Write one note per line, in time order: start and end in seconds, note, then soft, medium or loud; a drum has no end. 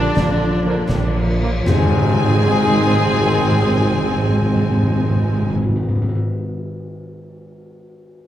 0.00 1.41 D3 medium
0.00 0.17 F3 medium
0.00 0.17 G3 medium
0.00 0.17 D4 medium
0.00 1.37 D4 medium
0.00 1.37 D4 loud
0.00 1.36 D5 medium
0.00 1.37 D5 medium
0.00 1.40 D5 medium
0.16 0.81 A#1 medium
0.16 0.41 D3 medium
0.16 0.41 F3 medium
0.16 0.41 A#3 medium
0.16 concert bass drum medium
0.16 snare medium
0.41 0.65 F3 medium
0.41 0.90 F3 medium
0.41 0.65 D4 medium
0.65 0.88 D3 medium
0.65 0.74 F3 medium
0.65 0.88 A#3 medium
0.65 0.74 A#3 medium
0.89 1.58 A#1 medium
0.89 1.15 F3 medium
0.89 1.02 G3 medium
0.89 1.15 D4 medium
0.89 concert bass drum medium
0.89 snare medium
1.15 1.41 D3 medium
1.15 1.66 F3 medium
1.15 1.41 A#3 medium
1.40 1.67 F3 medium
1.40 1.50 F3 medium
1.40 1.50 A#3 medium
1.40 1.67 D4 medium
1.66 5.51 G#1 medium
1.66 1.73 G#2 medium
1.66 5.51 D#3 medium
1.66 5.51 G#3 medium
1.66 5.52 G#3 medium
1.66 5.52 C4 medium
1.66 5.52 D#4 medium
1.66 5.52 G#4 loud
1.66 5.51 G#5 medium
1.66 5.52 G#5 medium
1.66 snare medium
1.66 mid tom medium
1.66 tam-tam medium
1.73 1.80 G#2 medium
1.80 1.86 G#2 medium
1.86 1.93 G#2 medium
1.93 2.00 G#2 medium
2.00 2.07 G#2 medium
2.07 2.14 G#2 medium
2.14 2.20 G#2 medium
2.20 2.27 G#2 medium
2.27 2.33 G#2 medium
2.33 2.40 G#2 medium
2.40 2.46 G#2 medium
2.46 2.53 G#2 medium
2.53 2.59 G#2 medium
2.60 2.66 G#2 medium
2.67 2.73 G#2 medium
2.73 2.80 G#2 medium
2.80 2.87 G#2 medium
2.87 2.93 G#2 medium
2.93 3.00 G#2 medium
3.00 3.06 G#2 medium
3.06 3.13 G#2 medium
3.13 3.19 G#2 medium
3.19 3.26 G#2 medium
3.26 3.32 G#2 medium
3.32 3.38 G#2 medium
3.38 3.45 G#2 medium
3.45 3.51 G#2 medium
3.52 3.58 G#2 medium
3.58 3.64 G#2 medium
3.64 3.71 G#2 medium
3.71 3.77 G#2 medium
3.77 3.84 G#2 medium
3.84 3.91 G#2 medium
3.91 3.97 G#2 medium
3.97 4.03 G#2 medium
4.03 4.10 G#2 medium
4.10 4.16 G#2 medium
4.16 4.23 G#2 medium
4.23 4.29 G#2 medium
4.29 4.35 G#2 medium
4.35 4.42 G#2 medium
4.42 4.48 G#2 medium
4.48 4.55 G#2 medium
4.55 4.62 G#2 medium
4.62 4.69 G#2 medium
4.69 4.76 G#2 medium
4.76 4.82 G#2 medium
4.83 4.89 G#2 medium
4.89 4.96 G#2 medium
4.96 5.02 G#2 medium
5.02 5.09 G#2 medium
5.09 5.15 G#2 medium
5.16 5.22 G#2 medium
5.22 5.29 G#2 medium
5.29 5.36 G#2 medium
5.36 5.42 G#2 medium
5.42 5.49 G#2 medium
5.49 5.56 G#2 medium
5.56 5.62 G#2 medium
5.62 5.69 G#2 medium
5.69 5.76 G#2 medium
5.76 5.83 G#2 medium
5.83 5.89 G#2 medium
5.89 5.95 G#2 medium
5.95 6.02 G#2 medium
6.02 6.09 G#2 medium
6.09 6.15 G#2 medium
6.15 6.22 G#2 medium